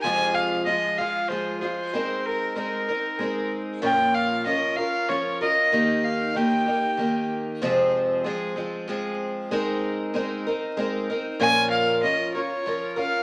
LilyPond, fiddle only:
\new Staff \with { instrumentName = "Fiddle" } { \time 3/4 \key f \minor \tempo 4 = 95 aes''8 f''8 ees''8 f''8 c''8 c''8~ | c''8 bes'8 bes'4. r8 | g''8 f''8 ees''8 f''8 des''8 ees''8~ | ees''8 f''8 g''4. r8 |
r2. | r2. | aes''8 f''8 ees''8 des''4 f''8 | }